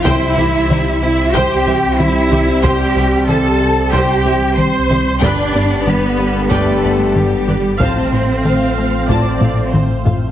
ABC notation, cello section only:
X:1
M:4/4
L:1/8
Q:1/4=93
K:C
V:1 name="Cello section"
E3 E G2 E2 | G2 A2 G2 c2 | D2 B,2 A,2 G,2 | C6 z2 |]